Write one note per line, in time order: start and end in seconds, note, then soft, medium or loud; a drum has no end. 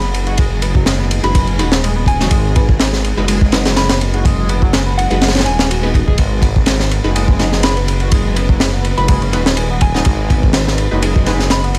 0.00 1.20 F#1 medium
0.00 11.79 D#3 medium
0.00 11.79 G#3 medium
0.00 11.79 B3 medium
0.00 0.09 B3 medium
0.00 6.17 G#4 medium
0.00 ride soft
0.14 ride medium
0.27 0.37 F#4 medium
0.27 ride soft
0.38 0.61 G#3 loud
0.38 kick loud
0.38 ride medium
0.62 0.74 B3 medium
0.62 ride medium
0.75 0.85 F#3 medium
0.75 kick loud
0.86 0.94 G#3 medium
0.86 snare loud
0.86 ride medium
0.99 1.06 B3 medium
1.11 ride medium
1.23 1.61 F#1 medium
1.23 1.39 G#3 medium
1.23 1.39 D#4 medium
1.23 1.39 F#4 medium
1.23 1.39 B4 loud
1.23 1.31 B5 medium
1.23 ride soft
1.34 1.46 G#3 loud
1.34 1.43 B5 medium
1.34 kick loud
1.34 ride loud
1.47 1.58 C#4 medium
1.47 ride soft
1.59 2.28 D#1 medium
1.59 1.70 G#3 loud
1.59 1.70 D#4 medium
1.59 1.70 F#4 medium
1.59 1.70 B4 loud
1.59 ride medium
1.72 snare loud
1.83 1.91 G#3 medium
1.83 ride medium
1.96 2.03 B3 medium
2.06 2.56 G#5 medium
2.06 kick medium
2.06 ride medium
2.20 2.30 F#3 loud
2.20 3.14 G#3 medium
2.20 3.14 D#4 medium
2.20 3.14 F#4 medium
2.20 3.14 D#5 medium
2.20 snare medium
2.31 3.13 G#1 loud
2.31 2.55 G#3 loud
2.31 kick loud
2.31 ride medium
2.56 2.60 B3 medium
2.56 kick loud
2.56 ride medium
2.69 kick loud
2.80 snare loud
2.80 ride medium
2.93 snare medium
3.04 ride medium
3.17 5.07 F#1 medium
3.17 3.33 G#3 medium
3.17 3.33 D#4 medium
3.17 3.33 F#4 medium
3.17 3.33 B4 medium
3.28 3.76 G#3 loud
3.28 ride medium
3.41 kick loud
3.52 3.69 G#3 medium
3.52 3.69 D#4 medium
3.52 3.69 F#4 medium
3.52 3.69 B4 loud
3.52 snare loud
3.52 ride medium
3.65 snare loud
3.65 ride medium
3.76 3.85 G#3 medium
3.76 3.89 B5 medium
3.76 snare loud
3.76 ride medium
3.89 3.97 B3 medium
3.89 snare loud
3.89 ride medium
4.01 ride medium
4.14 4.24 F#4 medium
4.14 ride soft
4.25 4.48 G#3 loud
4.25 kick loud
4.25 ride medium
4.49 4.61 B3 medium
4.49 ride medium
4.62 4.72 F#3 medium
4.62 kick medium
4.73 4.81 G#3 medium
4.73 snare loud
4.73 ride medium
4.86 4.93 B3 medium
4.98 5.06 F#5 medium
4.98 ride medium
5.10 5.48 F#1 medium
5.10 5.26 G#3 medium
5.10 5.26 D#4 medium
5.10 5.26 F#4 medium
5.10 5.26 B4 medium
5.10 5.18 F#5 medium
5.10 ride soft
5.21 5.33 G#3 loud
5.21 snare loud
5.21 ride medium
5.28 snare medium
5.28 ride medium
5.35 5.45 C#4 medium
5.35 snare medium
5.35 ride medium
5.40 snare loud
5.40 ride medium
5.45 6.15 D#1 medium
5.45 5.83 G#5 medium
5.45 ride medium
5.59 5.66 C#4 medium
5.59 snare loud
5.70 5.78 F#4 medium
5.70 ride medium
5.83 5.92 G#3 medium
5.83 5.90 B3 loud
5.83 5.92 D#4 medium
5.83 5.92 F#4 medium
5.83 5.92 B4 medium
5.94 7.01 G#3 medium
5.94 7.01 D#4 medium
5.94 7.01 F#4 medium
5.94 7.01 D#5 medium
5.94 kick medium
5.94 ride medium
6.07 6.14 G#4 loud
6.07 kick medium
6.18 7.00 G#1 loud
6.18 6.41 G#3 loud
6.18 11.79 B4 medium
6.18 kick loud
6.18 ride medium
6.42 6.47 B3 medium
6.42 kick loud
6.42 ride medium
6.56 kick loud
6.66 snare loud
6.66 ride medium
6.80 snare medium
6.91 ride medium
7.04 8.94 F#1 medium
7.04 7.20 G#3 medium
7.04 7.19 D#4 medium
7.04 7.20 F#4 medium
7.04 7.20 B4 loud
7.15 7.62 G#3 loud
7.15 ride medium
7.28 kick medium
7.39 7.56 G#3 medium
7.39 7.56 D#4 medium
7.39 7.56 F#4 medium
7.39 7.56 B4 loud
7.39 snare soft
7.39 ride medium
7.52 snare soft
7.63 7.72 G#3 medium
7.63 7.76 B5 medium
7.63 snare loud
7.63 ride medium
7.77 7.84 B3 medium
7.77 ride soft
7.88 ride medium
8.00 8.11 F#4 medium
8.00 ride soft
8.12 8.35 G#3 loud
8.12 kick loud
8.12 ride medium
8.36 8.48 B3 medium
8.36 ride medium
8.49 8.59 F#3 medium
8.49 kick medium
8.60 8.68 G#3 medium
8.60 snare loud
8.60 ride medium
8.73 8.80 B3 medium
8.85 ride medium
8.97 9.35 F#1 medium
8.97 9.13 G#3 medium
8.97 9.13 D#4 medium
8.97 9.13 F#4 medium
8.97 9.13 B4 loud
8.97 9.05 B5 medium
8.97 ride soft
9.08 9.21 G#3 loud
9.08 9.17 B5 medium
9.08 kick loud
9.08 ride loud
9.22 9.32 C#4 medium
9.22 ride soft
9.33 10.02 D#1 medium
9.33 9.44 G#3 loud
9.33 9.44 D#4 medium
9.33 9.44 F#4 medium
9.33 9.44 B4 loud
9.33 ride medium
9.46 snare loud
9.57 9.65 G#3 medium
9.57 ride medium
9.70 9.77 B3 medium
9.81 10.30 G#5 medium
9.81 kick loud
9.81 ride medium
9.94 10.04 F#3 loud
9.94 10.88 G#3 medium
9.94 10.88 D#4 medium
9.94 10.88 F#4 medium
9.94 10.88 D#5 loud
9.94 snare medium
10.05 10.87 G#1 loud
10.05 10.28 G#3 loud
10.05 kick loud
10.05 ride medium
10.29 10.34 B3 medium
10.29 kick medium
10.29 ride medium
10.43 kick loud
10.53 snare loud
10.53 ride medium
10.68 snare medium
10.78 ride medium
10.91 11.79 F#1 medium
10.91 11.07 G#3 medium
10.91 11.07 D#4 medium
10.91 11.07 F#4 medium
10.91 11.07 B4 medium
11.02 11.50 G#3 loud
11.02 ride loud
11.16 kick medium
11.26 11.43 G#3 loud
11.26 11.43 D#4 medium
11.26 11.43 F#4 medium
11.26 11.43 B4 loud
11.26 snare soft
11.26 ride medium
11.39 snare soft
11.50 11.59 G#3 medium
11.50 11.64 B5 medium
11.50 snare loud
11.50 ride medium
11.64 11.71 B3 medium
11.64 ride soft
11.75 ride medium